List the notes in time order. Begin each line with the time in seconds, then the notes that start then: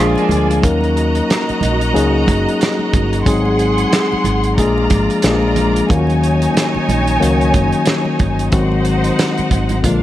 Already playing: F3 G#3 A#3 D4 F4 G#4 D5 G#5
0.00 A#1 D4 F4
0.15 A#3 D4, closed hi-hat, muted conga
0.29 D2, closed hi-hat, high conga, low conga
0.51 closed hi-hat
0.62 D#2 F#3 A#3 C#4 D#4 F#4 A#4 D#5 A#5, kick, closed hi-hat, muted conga
0.81 closed hi-hat, muted conga
0.97 closed hi-hat
1.15 closed hi-hat
1.30 snare, closed hi-hat
1.49 muted fingered electric bass stroke, closed hi-hat
1.61 A#1, closed hi-hat, high conga, low conga
1.81 closed hi-hat
1.93 C#2 F#3 A#3 C#4 D#4 G#4, closed hi-hat
2.27 F#1, kick, closed hi-hat, high conga
2.48 closed hi-hat
2.61 snare, closed hi-hat
2.79 muted conga
2.93 G1, kick, closed hi-hat, high conga, low conga
3.13 closed hi-hat
3.24 G#1 F#3 G#3 C4 D#4 G#4 F#5 C6, kick, closed hi-hat, muted conga
3.45 muted conga
3.59 closed hi-hat
3.78 closed hi-hat
3.93 snare, closed hi-hat
4.12 muted fingered electric bass stroke, muted conga
4.24 G#1, closed hi-hat, high conga, low conga
4.44 closed hi-hat
4.57 A#1 F3 G#3 A#3 D4 F4 G#4 D5 A#5, kick, closed hi-hat, muted conga
4.78 muted conga
4.90 G#1, kick, closed hi-hat, high conga
5.10 closed hi-hat
5.22 A#1 F3 G#3 A#3 D4 F4 G#4 D5 A#5, snare, closed hi-hat, muted conga
5.42 muted conga
5.56 closed hi-hat, high conga, low conga
5.76 closed hi-hat
5.89 D#2 D#3 F#3 A#3 C#4 D#4 F4 C#5 G#5, kick, closed hi-hat, muted conga
5.97 F#4
6.07 closed hi-hat, muted conga
6.23 closed hi-hat
6.42 closed hi-hat
6.54 snare, closed hi-hat, muted conga
6.75 muted fingered electric bass stroke, muted conga
6.89 A#1, closed hi-hat, high conga, low conga
7.07 closed hi-hat
7.20 C#2 D#3 F#3 A#3 C#4 F#4, closed hi-hat, muted conga
7.41 closed hi-hat
7.54 F#1, kick, closed hi-hat, high conga
7.72 closed hi-hat
7.86 snare, closed hi-hat, muted conga
8.05 muted conga
8.19 G1, kick, closed hi-hat, high conga, low conga
8.39 closed hi-hat
8.52 G#1 D#3 F#3 G#3 C4 D#4 F#4 C5 F#5, kick, closed hi-hat
8.72 muted conga
8.85 closed hi-hat
9.04 closed hi-hat
9.19 snare, closed hi-hat, muted conga
9.38 muted fingered electric bass stroke, closed hi-hat, muted conga
9.51 G#1, kick, closed hi-hat, high conga, low conga
9.69 closed hi-hat, high conga
9.83 A#1 D3 F3 G#3 A#3 D4 F4 A#4 F5, kick, closed hi-hat